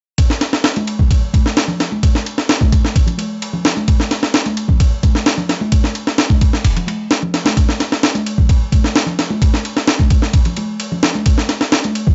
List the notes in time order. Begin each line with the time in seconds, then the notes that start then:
0.18 kick, ride
0.30 snare
0.41 snare, ride
0.53 snare
0.64 snare, ride
0.76 ride, high conga
0.87 ride
0.99 kick, low conga
1.11 kick, ride
1.33 kick, ride, high conga
1.46 snare
1.57 snare, ride
1.68 low conga
1.80 snare, ride
1.92 high conga
2.03 kick, ride
2.15 snare
2.26 ride
2.38 snare
2.49 snare, ride
2.61 kick, high conga
2.72 kick, ride
2.85 snare
2.96 kick, ride
3.07 ride, low conga
3.18 ride, high conga
3.42 ride
3.53 low conga
3.65 snare, ride
3.77 high conga
3.88 kick, ride
4.00 snare
4.11 snare, ride
4.23 snare
4.34 snare, ride
4.46 ride, high conga
4.57 ride
4.68 kick, low conga
4.80 kick, ride
5.03 kick, ride, high conga
5.15 snare
5.26 snare, ride
5.38 low conga
5.49 snare, ride
5.61 high conga
5.72 kick, ride
5.84 snare
5.95 ride
6.07 snare
6.18 snare, ride
6.30 kick, high conga
6.41 kick, ride
6.53 snare
6.65 kick, ride
6.77 ride, low conga
6.87 ride, high conga
7.11 snare, ride
7.23 low conga
7.34 snare, ride
7.45 snare, ride, high conga
7.57 kick, ride
7.69 snare
7.80 snare, ride
7.92 snare
8.03 snare, ride
8.15 ride, high conga
8.26 ride
8.38 kick, low conga
8.49 kick, ride
8.72 kick, ride, high conga
8.84 snare
8.96 snare, ride
9.06 low conga
9.19 snare, ride
9.30 high conga
9.42 kick, ride
9.54 snare
9.65 ride
9.77 snare
9.88 snare, ride
9.99 kick, high conga
10.10 kick, ride
10.22 snare
10.33 kick, ride
10.45 ride, low conga
10.57 ride, high conga
10.80 ride
10.92 low conga
11.03 snare, ride
11.15 high conga
11.26 kick, ride
11.38 snare
11.49 snare, ride
11.61 snare
11.72 snare, ride
11.84 ride, high conga
11.95 ride
12.07 kick, low conga